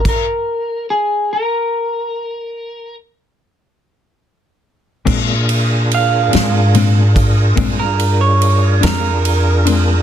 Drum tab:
CC |x-----------|x-----------|
RD |------------|-xxxxxxxxxxx|
SD |------------|---o-----o--|
BD |o-----------|o----oo-----|